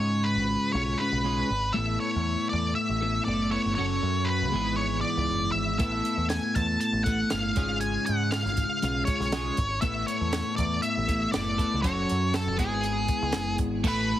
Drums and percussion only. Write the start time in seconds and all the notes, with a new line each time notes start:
5.79 kick, closed hi-hat
6.05 closed hi-hat
6.30 snare, closed hi-hat
6.55 kick, closed hi-hat
6.81 closed hi-hat
7.06 kick, closed hi-hat
7.30 snare, closed hi-hat
7.56 kick, closed hi-hat
7.81 closed hi-hat
8.07 closed hi-hat
8.32 snare, closed hi-hat
8.45 snare
8.57 kick, closed hi-hat
8.82 closed hi-hat
9.07 kick, closed hi-hat
9.21 snare
9.32 snare, closed hi-hat
9.57 kick, closed hi-hat
9.82 kick, closed hi-hat
10.08 closed hi-hat
10.33 snare, closed hi-hat
10.58 kick, closed hi-hat
10.83 closed hi-hat
11.09 kick, closed hi-hat
11.34 snare, closed hi-hat
11.59 kick, closed hi-hat
11.84 kick, closed hi-hat
12.09 closed hi-hat
12.34 snare, closed hi-hat
12.59 kick, closed hi-hat
12.83 closed hi-hat
13.08 kick, closed hi-hat
13.32 snare, closed hi-hat
13.58 kick, closed hi-hat
13.84 kick, crash